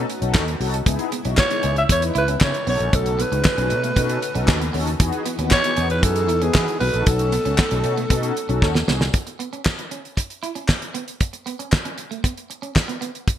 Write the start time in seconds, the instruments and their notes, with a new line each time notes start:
Already playing: string machine A3 B3 D#4 F#4
0.10 closed hi-hat
0.21 fretless electric bass B1, analog polysynth C#4 D#4 F#4 A4, closed hi-hat
0.34 kick, snare, clap
0.48 closed hi-hat
0.60 fretless electric bass C2, analog polysynth C#4 D#4 F#4 A4, open hi-hat
0.74 closed hi-hat
0.86 fretless electric bass C#2, string machine C#3 G#3 E4, analog polysynth B3 D#4 E4 G#4, kick, closed hi-hat
0.99 muted clean electric guitar stroke, closed hi-hat
1.12 clean electric guitar B3, closed hi-hat
1.24 fretless electric bass B1, analog polysynth B3 D#4 E4 F#4, clean electric guitar C#4, closed hi-hat
1.37 alto saxophone C#5, kick, snare, clap
1.50 analog polysynth B3 D#4 E4 G#4, closed hi-hat
1.63 fretless electric bass C#2, clean electric guitar C#4, closed hi-hat
1.76 alto saxophone E5, closed hi-hat
1.89 fretless electric bass E2, analog polysynth B3 D#4 E4 B4, alto saxophone C#5, muted clean electric guitar stroke, kick, closed hi-hat
2.02 closed hi-hat
2.15 fretless electric bass C#2, clean electric guitar E4, alto saxophone B4, closed hi-hat
2.28 analog polysynth B3 D#4 E4 B4, clean electric guitar C#4, closed hi-hat
2.41 fretless electric bass C#3, alto saxophone C#5, kick, snare, clap
2.54 closed hi-hat
2.66 fretless electric bass B1, string machine A3 D#4, clean electric guitar B3, analog polysynth C#4 D#4 F#4 A4, alto saxophone C#5, open hi-hat
2.80 fretless electric bass A#1, closed hi-hat
2.93 fretless electric bass B1, alto saxophone A4, kick, closed hi-hat
3.06 muted clean electric guitar stroke, closed hi-hat
3.19 clean electric guitar B3, alto saxophone B4, closed hi-hat
3.32 fretless electric bass C#2, analog polysynth C#4 D#4 F#4 G#4, clean electric guitar C#4, closed hi-hat
3.44 kick, snare, clap
3.58 fretless electric bass B1, clean electric guitar C#4, analog polysynth C#4 D#4 F#4 A4, closed hi-hat
3.70 fretless electric bass B2, muted clean electric guitar stroke, closed hi-hat
3.83 clean electric guitar A3, closed hi-hat
3.96 fretless electric bass B2, clean electric guitar B3, analog polysynth C#4 D#4 F#4 A4, kick, closed hi-hat
4.09 closed hi-hat
4.22 muted clean electric guitar stroke, closed hi-hat
4.35 fretless electric bass B1, clean electric guitar C#4, analog polysynth C#4 D#4 F#4 A4, closed hi-hat
4.47 fretless electric bass D#2, muted clean electric guitar stroke, kick, snare, clap
4.60 clean electric guitar B3, closed hi-hat
4.73 fretless electric bass D#2, clean electric guitar B3, analog polysynth C#4 D#4 F#4 A4, open hi-hat
4.87 closed hi-hat
4.99 fretless electric bass E2, string machine E3 B3 D#4 E4, analog polysynth B3 D#4 F#4 G#4, kick, closed hi-hat
5.12 muted clean electric guitar stroke, closed hi-hat
5.25 clean electric guitar B3, closed hi-hat
5.38 fretless electric bass D#2, analog polysynth B3 D#4 F#4 B4, clean electric guitar C#4, closed hi-hat
5.51 alto saxophone C#5, kick, snare, clap
5.64 analog polysynth B3 D#4 F#4 G#4, closed hi-hat
5.77 fretless electric bass E2, clean electric guitar C#4, closed hi-hat
5.90 alto saxophone B4, closed hi-hat
6.03 fretless electric bass F#2, analog polysynth B3 D#4 F#4 G#4, alto saxophone A4, muted clean electric guitar stroke, kick, closed hi-hat
6.16 closed hi-hat
6.28 fretless electric bass E2, clean electric guitar D#4, closed hi-hat
6.42 analog polysynth B3 D#4 F#4 B4, clean electric guitar C#4, alto saxophone G#4, closed hi-hat
6.54 fretless electric bass E3, kick, snare, clap
6.68 closed hi-hat
6.80 fretless electric bass B1, string machine A3 B3 F#4, clean electric guitar B3, analog polysynth C#4 D#4 F#4 A4, alto saxophone B4, open hi-hat
6.94 fretless electric bass A#1, closed hi-hat
7.06 fretless electric bass B1, alto saxophone A4, kick, closed hi-hat
7.19 muted clean electric guitar stroke, closed hi-hat
7.32 clean electric guitar B3, closed hi-hat
7.45 fretless electric bass C#2, analog polysynth C#4 D#4 F#4 A4, clean electric guitar C#4, closed hi-hat
7.58 kick, snare, clap
7.71 fretless electric bass B1, clean electric guitar C#4, analog polysynth C#4 D#4 F#4 A4, closed hi-hat
7.84 fretless electric bass B2, muted clean electric guitar stroke, closed hi-hat
7.97 clean electric guitar A3, closed hi-hat
8.10 fretless electric bass B2, clean electric guitar B3, analog polysynth C#4 D#4 F#4 A4, kick, closed hi-hat
8.23 closed hi-hat
8.36 muted clean electric guitar stroke, closed hi-hat
8.49 fretless electric bass B1, analog polysynth C#4 D#4 F#4 A4, clean electric guitar C#4, closed hi-hat
8.62 fretless electric bass D#2, muted clean electric guitar stroke, kick, snare
8.75 clean electric guitar B3, snare
8.88 fretless electric bass C2, clean electric guitar B3, analog polysynth C#4 D#4 F#4 G#4, snare
9.01 snare
9.14 kick, closed hi-hat
9.27 muted clean electric guitar stroke, closed hi-hat
9.39 clean electric guitar B3, closed hi-hat
9.53 clean electric guitar C#4, closed hi-hat
9.65 kick, snare, clap
9.79 closed hi-hat
9.91 clean electric guitar C#4, closed hi-hat
10.05 closed hi-hat
10.17 muted clean electric guitar stroke, kick, closed hi-hat
10.30 closed hi-hat
10.43 clean electric guitar E4, closed hi-hat
10.55 clean electric guitar C#4, closed hi-hat
10.68 kick, snare, clap
10.82 closed hi-hat
10.94 clean electric guitar B3, closed hi-hat
11.08 closed hi-hat
11.21 kick, closed hi-hat
11.33 muted clean electric guitar stroke, closed hi-hat
11.46 clean electric guitar B3, closed hi-hat
11.59 clean electric guitar C#4, closed hi-hat
11.72 kick, snare, clap
11.85 clean electric guitar C#4, closed hi-hat
11.98 muted clean electric guitar stroke, closed hi-hat
12.11 clean electric guitar A3, closed hi-hat
12.24 clean electric guitar B3, kick, closed hi-hat
12.37 closed hi-hat
12.50 muted clean electric guitar stroke, closed hi-hat
12.62 clean electric guitar C#4, closed hi-hat
12.75 muted clean electric guitar stroke, kick, snare, clap
12.88 clean electric guitar B3, closed hi-hat
13.01 clean electric guitar B3, closed hi-hat
13.15 closed hi-hat
13.28 kick, closed hi-hat